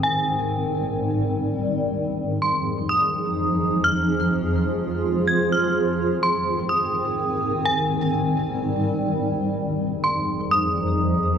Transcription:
0.00 1.90 G#2 medium
0.00 1.90 D#3 medium
0.00 1.92 G3 medium
0.00 1.90 C4 medium
0.00 0.48 G#5 loud
1.94 5.71 F2 medium
1.94 5.71 F3 medium
1.94 3.83 D#4 medium
1.94 7.62 G#4 medium
2.42 2.87 C6 medium
2.89 3.81 D#6 medium
3.84 5.73 F4 medium
3.84 4.29 F6 medium
5.28 5.50 G#6 medium
5.52 5.74 F6 medium
5.75 9.52 G#2 medium
5.75 9.52 D#3 medium
5.75 9.52 C4 medium
6.23 6.68 C6 medium
6.69 7.61 D#6 medium
7.65 9.54 G3 medium
7.65 8.10 G#5 loud
9.56 11.38 F2 medium
9.56 11.38 F3 medium
9.56 11.38 D#4 medium
9.56 11.38 G#4 medium
10.04 10.48 C6 medium
10.51 11.38 D#6 medium

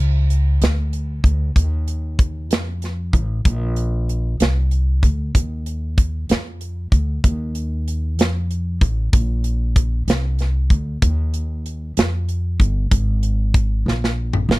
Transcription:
0.00 0.57 C#2 medium
0.30 closed hi-hat soft
0.62 1.21 D2 medium
0.62 snare medium
0.62 closed hi-hat medium
0.93 closed hi-hat soft
1.24 1.53 D2 medium
1.24 kick medium
1.24 closed hi-hat soft
1.56 2.51 D#2 medium
1.56 kick medium
1.56 closed hi-hat medium
1.88 closed hi-hat soft
2.19 kick medium
2.19 closed hi-hat soft
2.51 3.10 F2 medium
2.51 snare medium
2.51 closed hi-hat medium
2.82 snare soft
2.82 closed hi-hat soft
3.13 3.43 A1 medium
3.13 kick medium
3.13 closed hi-hat soft
3.45 4.36 A#1 medium
3.45 kick loud
3.45 closed hi-hat medium
3.76 closed hi-hat medium
4.09 closed hi-hat soft
4.40 5.00 C2 medium
4.40 snare medium
4.40 closed hi-hat medium
4.71 closed hi-hat soft
5.03 5.32 D2 medium
5.03 kick medium
5.03 closed hi-hat soft
5.35 6.26 D#2 medium
5.35 kick medium
5.35 closed hi-hat medium
5.66 closed hi-hat medium
5.98 kick medium
5.98 closed hi-hat soft
6.29 6.89 F2 medium
6.29 snare medium
6.29 closed hi-hat medium
6.61 closed hi-hat soft
6.92 7.21 D2 medium
6.92 kick medium
6.92 closed hi-hat soft
7.24 8.19 D#2 medium
7.24 kick loud
7.24 closed hi-hat medium
7.55 closed hi-hat medium
7.88 closed hi-hat soft
8.19 8.78 F2 medium
8.19 snare medium
8.19 closed hi-hat medium
8.51 closed hi-hat soft
8.81 9.11 A1 medium
8.81 kick medium
8.81 closed hi-hat soft
9.13 10.04 A#1 medium
9.13 kick loud
9.13 closed hi-hat medium
9.44 closed hi-hat medium
9.76 kick medium
9.76 closed hi-hat medium
10.08 10.67 C2 medium
10.08 snare medium
10.08 closed hi-hat medium
10.39 snare soft
10.39 closed hi-hat soft
10.70 10.99 D2 medium
10.70 kick medium
10.70 closed hi-hat soft
11.02 11.93 D#2 medium
11.02 kick loud
11.02 closed hi-hat medium
11.34 closed hi-hat medium
11.66 closed hi-hat soft
11.97 12.56 F2 medium
11.97 snare medium
11.97 closed hi-hat medium
12.29 closed hi-hat soft
12.60 12.89 G1 medium
12.60 kick medium
12.60 closed hi-hat soft
12.91 13.82 G#1 medium
12.91 kick medium
12.91 closed hi-hat medium
13.23 closed hi-hat medium
13.54 kick medium
13.54 closed hi-hat soft
13.86 14.45 A#1 medium
13.86 snare soft
14.04 snare soft
14.33 mid tom medium
14.49 14.59 G1 medium
14.49 snare medium

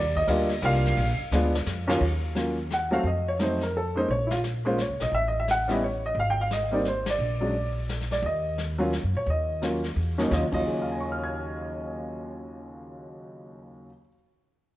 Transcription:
0.00 0.27 D#2 loud
0.00 0.16 D5 medium
0.15 0.60 D#5 loud
0.15 kick medium
0.27 0.61 D2 medium
0.27 0.47 G3 medium
0.27 0.48 A#3 medium
0.27 0.48 D4 medium
0.27 0.48 F4 medium
0.27 hi-hat pedal medium
0.27 ride medium
0.50 snare soft
0.62 0.96 C2 loud
0.62 0.97 G3 medium
0.62 0.97 A#3 medium
0.62 0.98 D4 medium
0.62 0.98 F4 medium
0.62 1.16 F5 loud
0.62 hi-hat pedal soft
0.62 ride medium
0.74 snare soft
0.86 snare medium
0.97 1.17 A#1 loud
0.97 ride medium
1.19 muted upright bass stroke soft
1.31 1.65 D2 medium
1.31 1.52 G#3 medium
1.31 1.52 B3 medium
1.31 1.52 D4 medium
1.31 1.53 F4 medium
1.31 snare medium
1.31 hi-hat pedal medium
1.55 snare medium
1.66 2.00 F2 loud
1.66 snare medium
1.87 1.99 D#2 medium
1.87 2.00 F#3 medium
1.87 2.00 A#3 medium
1.87 2.00 C#4 medium
1.87 2.01 F4 loud
1.87 snare loud
2.01 3.01 D#2 medium
2.01 brush sweep soft
2.01 kick medium
2.01 crash medium
2.35 2.55 F#3 medium
2.35 2.55 A#3 medium
2.35 2.55 C#4 medium
2.35 2.55 F4 medium
2.35 snare medium
2.35 hi-hat pedal medium
2.70 2.93 F#5 medium
2.70 snare medium
2.70 hi-hat pedal medium
2.91 3.03 F#3 medium
2.91 3.04 A3 medium
2.91 3.04 C4 medium
2.91 3.04 F#4 medium
2.91 3.05 F5 medium
3.03 4.04 F2 medium
3.03 3.27 D#5 medium
3.03 brush sweep soft
3.28 3.40 C#5 medium
3.39 3.59 F#3 medium
3.39 3.59 A3 soft
3.39 3.59 C4 medium
3.39 3.59 D#4 medium
3.39 3.62 C5 medium
3.39 snare medium
3.39 hi-hat pedal medium
3.61 3.75 A#4 medium
3.61 snare soft
3.77 3.96 A4 medium
3.96 4.07 G#3 medium
3.96 4.07 A#3 medium
3.96 4.08 C#4 medium
3.96 4.08 D#4 medium
3.96 4.09 C5 medium
4.08 4.85 A#1 medium
4.08 4.30 C#5 medium
4.08 brush sweep soft
4.27 4.29 E4 medium
4.27 snare medium
4.31 4.39 F4 medium
4.44 snare medium
4.44 hi-hat pedal medium
4.65 4.77 G#3 medium
4.65 4.77 A#3 medium
4.65 4.77 C#4 medium
4.65 4.77 F4 medium
4.65 4.78 C5 medium
4.78 5.01 C#5 medium
4.78 snare medium
4.78 hi-hat pedal medium
4.89 5.00 C#2 medium
5.00 5.11 A#1 medium
5.00 5.13 D#5 medium
5.00 snare medium
5.12 6.12 A1 medium
5.12 5.25 E5 medium
5.12 brush sweep medium
5.28 5.37 D#5 medium
5.40 5.49 E5 medium
5.48 5.70 F#5 loud
5.48 snare medium
5.48 hi-hat pedal medium
5.68 5.80 G3 medium
5.68 5.80 B3 medium
5.68 5.80 C#4 medium
5.68 5.81 E4 medium
5.68 snare soft
5.72 5.83 D#5 medium
5.84 6.04 C#5 medium
6.06 6.17 D#5 medium
6.15 7.15 G#1 medium
6.15 brush sweep soft
6.20 6.29 F5 medium
6.30 6.40 G5 medium
6.41 6.51 F5 medium
6.51 6.72 D#5 medium
6.51 snare medium
6.51 hi-hat pedal medium
6.71 6.84 G3 medium
6.71 6.84 A#3 medium
6.71 6.84 C4 medium
6.71 6.84 D#4 medium
6.71 6.86 D5 medium
6.85 7.07 C5 medium
6.85 snare medium
6.85 hi-hat pedal medium
7.06 snare medium
7.06 ride medium
7.10 7.86 D5 medium
7.19 8.19 A#1 medium
7.19 brush sweep soft
7.40 7.53 F#3 medium
7.40 7.53 G#3 medium
7.40 7.53 C#4 soft
7.40 7.53 D4 medium
7.89 snare medium
7.89 hi-hat pedal medium
8.01 snare soft
8.11 8.24 D5 medium
8.11 snare soft
8.22 8.99 D#2 loud
8.22 8.57 D#5 medium
8.22 brush sweep soft
8.58 snare medium
8.58 hi-hat pedal medium
8.78 8.91 F#3 medium
8.78 8.91 A#3 medium
8.78 8.91 C#4 medium
8.78 8.91 F4 medium
8.93 snare medium
8.93 hi-hat pedal medium
9.04 9.14 F#2 medium
9.15 9.26 A#2 medium
9.15 9.28 C#5 medium
9.26 9.92 D#2 medium
9.26 9.61 D#5 medium
9.26 brush sweep soft
9.62 9.81 F#3 medium
9.62 9.81 A#3 medium
9.62 9.81 C#4 medium
9.62 9.82 F4 medium
9.62 snare medium
9.62 hi-hat pedal medium
9.84 snare soft
9.96 10.28 E2 medium
10.18 10.28 D#2 medium
10.18 10.29 F#3 medium
10.18 10.30 A#3 medium
10.18 10.30 C#4 medium
10.18 10.30 D#4 medium
10.18 snare soft
10.30 10.43 D#2 medium
10.30 10.43 D#2 loud
10.30 10.43 C#3 medium
10.30 10.44 F#3 medium
10.30 10.44 F4 medium
10.30 10.44 D#5 medium
10.30 kick medium
10.30 snare medium
10.51 13.87 D#2 medium
10.51 13.84 D#2 medium
10.51 13.88 C#3 medium
10.51 13.88 F#3 medium
10.51 13.89 F4 medium
10.51 13.85 D#5 medium
10.51 kick medium
10.51 crash medium
10.66 13.84 G#4 soft
10.74 13.88 C#5 soft
10.82 13.92 F5 soft
10.91 13.97 G#5 soft
11.00 14.01 C#6 soft
11.12 14.07 F6 soft
11.24 14.13 G#6 soft

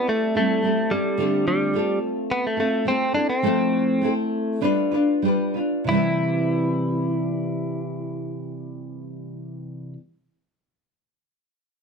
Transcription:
0.00 0.35 G3 medium
0.00 0.37 C4 medium
0.00 0.35 E4 medium
0.00 0.35 A4 medium
0.09 0.36 A3 medium
0.35 0.61 G3 soft
0.35 0.93 A3 medium
0.35 0.62 C4 soft
0.35 0.63 E4 soft
0.35 0.63 A4 medium
0.62 0.90 G3 soft
0.62 0.90 C4 medium
0.62 0.91 E4 medium
0.62 0.90 A4 medium
0.91 1.46 G3 medium
0.91 1.17 G3 soft
0.91 1.17 C4 soft
0.91 1.18 E4 soft
0.91 1.18 A4 medium
1.18 1.73 D3 medium
1.18 1.73 A3 medium
1.18 1.74 C4 medium
1.18 1.75 F4 medium
1.18 1.76 A4 medium
1.48 1.98 G3 medium
1.73 2.57 A3 medium
1.73 2.57 C4 medium
1.73 2.57 F4 medium
1.73 2.55 A4 medium
2.31 2.45 B3 medium
2.47 2.59 A3 medium
2.57 2.85 A3 medium
2.57 2.84 C4 soft
2.57 2.86 F4 medium
2.57 2.85 A4 medium
2.85 3.14 A3 medium
2.85 3.14 C4 medium
2.85 3.15 F4 medium
2.85 3.12 A4 medium
3.13 3.43 C4 soft
3.13 3.28 D4 loud
3.13 3.43 E4 soft
3.13 3.42 A4 soft
3.30 4.13 C4 medium
3.42 4.01 F3 medium
3.42 4.00 A3 medium
3.42 4.01 C4 medium
3.42 4.02 E4 medium
3.42 4.02 A4 medium
4.01 4.60 A3 medium
4.01 4.61 C4 medium
4.01 4.62 E4 medium
4.01 4.62 A4 medium
4.61 4.92 G3 medium
4.61 4.92 D4 medium
4.61 4.92 F4 medium
4.61 4.90 B4 medium
4.91 5.22 D4 soft
4.91 5.23 F4 medium
4.91 5.23 B4 medium
5.22 5.54 G3 medium
5.22 5.55 D4 medium
5.22 5.54 F4 medium
5.22 5.53 B4 medium
5.54 5.88 D4 soft
5.54 5.87 F4 soft
5.54 5.87 B4 soft
5.84 9.95 C3 medium
5.84 9.96 E3 medium
5.89 9.97 G3 medium
5.89 9.98 C4 medium
5.89 9.93 E4 medium
5.89 9.99 E4 medium
5.94 10.00 B4 medium

